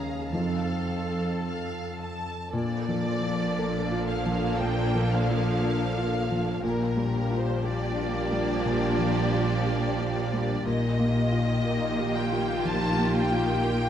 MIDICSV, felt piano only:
0, 0, Header, 1, 2, 480
1, 0, Start_track
1, 0, Key_signature, -2, "major"
1, 0, Tempo, 1104972
1, 1100, Time_signature, 4, 2, 24, 8
1, 1100, Tempo, 1032702
1, 2540, Tempo, 1008403
1, 4940, Tempo, 988468
1, 6504, End_track
2, 0, Start_track
2, 0, Title_t, "Felt piano"
2, 0, Program_c, 0, 0
2, 0, Control_c, 0, 64, 127
2, 0, Note_on_c, 0, 37, 48
2, 0, Note_on_c, 0, 53, 32
2, 0, Note_on_c, 0, 63, 33
2, 0, Note_on_c, 0, 73, 33
2, 124, Note_off_c, 0, 53, 0
2, 125, Note_off_c, 0, 37, 0
2, 126, Note_off_c, 0, 63, 0
2, 128, Note_off_c, 0, 73, 0
2, 142, Note_on_c, 0, 41, 37
2, 143, Note_on_c, 0, 53, 30
2, 145, Note_on_c, 0, 63, 30
2, 149, Control_c, 0, 64, 0
2, 149, Note_on_c, 0, 69, 28
2, 225, Control_c, 0, 64, 127
2, 1083, Note_off_c, 0, 41, 0
2, 1083, Note_off_c, 0, 53, 0
2, 1084, Note_off_c, 0, 63, 0
2, 1087, Note_off_c, 0, 69, 0
2, 1100, Note_on_c, 0, 46, 55
2, 1107, Control_c, 0, 64, 0
2, 1197, Control_c, 0, 64, 127
2, 1264, Note_on_c, 0, 53, 37
2, 1426, Note_on_c, 0, 65, 38
2, 1520, Note_off_c, 0, 53, 0
2, 1591, Note_on_c, 0, 69, 45
2, 1680, Note_off_c, 0, 65, 0
2, 1744, Note_on_c, 0, 65, 44
2, 1842, Note_off_c, 0, 69, 0
2, 1903, Note_on_c, 0, 53, 43
2, 1998, Note_off_c, 0, 65, 0
2, 2043, Note_off_c, 0, 46, 0
2, 2066, Note_on_c, 0, 58, 40
2, 2158, Note_off_c, 0, 53, 0
2, 2224, Note_on_c, 0, 53, 39
2, 2320, Note_off_c, 0, 58, 0
2, 2388, Note_on_c, 0, 65, 41
2, 2478, Note_off_c, 0, 53, 0
2, 2540, Note_on_c, 0, 69, 47
2, 2639, Note_off_c, 0, 65, 0
2, 2704, Note_on_c, 0, 65, 45
2, 2795, Note_off_c, 0, 69, 0
2, 2863, Note_on_c, 0, 53, 42
2, 2955, Note_off_c, 0, 65, 0
2, 3019, Note_off_c, 0, 53, 0
2, 3019, Note_on_c, 0, 46, 53
2, 3024, Control_c, 0, 64, 0
2, 3090, Control_c, 0, 64, 127
2, 3176, Note_on_c, 0, 55, 39
2, 3338, Note_on_c, 0, 65, 41
2, 3433, Note_off_c, 0, 55, 0
2, 3498, Note_on_c, 0, 67, 45
2, 3595, Note_off_c, 0, 65, 0
2, 3659, Note_on_c, 0, 65, 44
2, 3755, Note_off_c, 0, 67, 0
2, 3818, Note_on_c, 0, 55, 42
2, 3916, Note_off_c, 0, 65, 0
2, 3962, Note_off_c, 0, 46, 0
2, 3981, Note_on_c, 0, 46, 43
2, 4076, Note_off_c, 0, 55, 0
2, 4139, Note_on_c, 0, 53, 41
2, 4305, Note_on_c, 0, 65, 42
2, 4398, Note_off_c, 0, 53, 0
2, 4462, Note_on_c, 0, 67, 47
2, 4560, Note_off_c, 0, 65, 0
2, 4624, Note_on_c, 0, 65, 42
2, 4718, Note_off_c, 0, 67, 0
2, 4777, Note_on_c, 0, 55, 43
2, 4877, Note_off_c, 0, 65, 0
2, 4922, Note_off_c, 0, 46, 0
2, 4937, Note_on_c, 0, 46, 51
2, 4938, Note_off_c, 0, 55, 0
2, 4947, Control_c, 0, 64, 0
2, 5025, Control_c, 0, 64, 127
2, 5096, Note_on_c, 0, 58, 37
2, 5255, Note_on_c, 0, 65, 44
2, 5357, Note_off_c, 0, 58, 0
2, 5415, Note_on_c, 0, 70, 44
2, 5516, Note_off_c, 0, 65, 0
2, 5580, Note_on_c, 0, 67, 46
2, 5677, Note_off_c, 0, 70, 0
2, 5742, Note_on_c, 0, 65, 42
2, 5838, Note_off_c, 0, 67, 0
2, 5883, Note_off_c, 0, 46, 0
2, 5901, Note_on_c, 0, 53, 45
2, 5998, Note_off_c, 0, 65, 0
2, 6059, Note_on_c, 0, 58, 43
2, 6156, Note_off_c, 0, 53, 0
2, 6219, Note_on_c, 0, 65, 47
2, 6314, Note_off_c, 0, 58, 0
2, 6379, Note_on_c, 0, 70, 52
2, 6474, Note_off_c, 0, 65, 0
2, 6504, Note_off_c, 0, 70, 0
2, 6504, End_track
0, 0, End_of_file